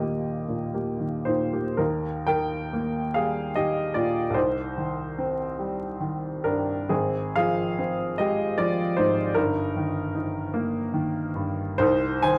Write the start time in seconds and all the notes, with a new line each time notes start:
Already playing: D#2 A#2 D#3 D#5
0.00 A#3 G4
0.48 A#2
0.74 A#3 G4
1.00 D#3
1.25 A#2 D#4 C5
1.53 A#3 G4
1.77 D#2 D#4 A#4
2.27 D#3 A#4 G5
2.73 A#3
3.14 G3 G#4 F5
3.56 D#3 G4 D#5
3.94 A#2 F4 D5
4.30 C2
4.34 D#4 C5
4.78 D#3
5.18 C4
5.59 G3
6.00 D#3
6.44 G2 D4 A#4
6.89 G#1 C4 G#4
7.36 F3 G#4 F5
7.79 C4
8.18 G#3 G4 D#5
8.58 F3 F4 D5
8.97 G#2 D#4 C5
9.35 G1 D#4 A#4
9.76 D#3
10.15 D#4
10.54 A#3
10.94 D#3
11.35 G2
11.78 C2 D#4 C5
12.22 D#3 C5 G#5